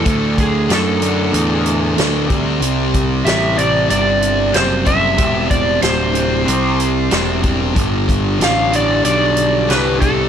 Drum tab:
HH |xxxxxxxx|xxxxxxxx|xxxxxxxx|xxxxxxxx|
SD |--o---o-|--o---o-|--o---o-|--o---o-|
BD |oo-----o|-o-----o|oo-----o|oo-----o|